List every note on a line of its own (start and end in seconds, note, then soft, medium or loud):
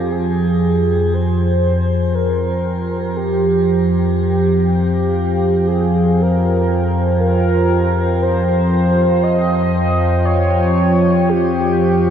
0.00 0.11 F2 medium
0.00 0.11 F3 medium
0.00 0.12 G4 medium
0.11 12.10 F2 medium
0.11 12.10 F3 medium
0.11 12.10 F4 medium
0.11 1.15 G#4 medium
0.31 12.10 C5 medium
1.14 2.16 C5 medium
1.91 12.10 G5 medium
2.15 3.18 A#4 medium
3.16 4.16 G4 medium
4.17 5.69 G4 loud
4.34 12.10 F5 medium
5.67 6.23 G#4 medium
6.22 7.20 A#4 loud
7.20 8.24 A#4 loud
8.22 9.25 C5 loud
9.23 10.27 D#5 loud
10.25 11.31 C#5 loud
11.29 12.10 G4 loud